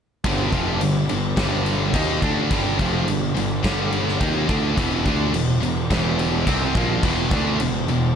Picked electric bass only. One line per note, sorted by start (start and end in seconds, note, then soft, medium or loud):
0.25 0.51 G1 loud
0.52 0.79 F1 medium
0.82 1.08 G1 medium
1.12 1.37 G1 medium
1.38 1.90 G1 medium
1.94 2.21 D#2 medium
2.22 2.49 D2 medium
2.51 2.78 G1 medium
2.80 3.06 F1 medium
3.08 3.34 G1 medium
3.36 3.63 G1 medium
3.64 4.17 G1 loud
4.21 4.47 D#2 medium
4.49 4.76 D2 medium
4.77 5.04 E1 medium
5.06 5.32 D2 medium
5.34 5.60 E1 medium
5.62 5.88 E1 medium
5.90 6.43 E1 medium
6.47 6.73 C2 medium
6.75 7.01 A#1 medium
7.03 7.30 E1 loud
7.31 7.58 D2 medium
7.60 7.87 E1 medium
7.88 8.14 E1 medium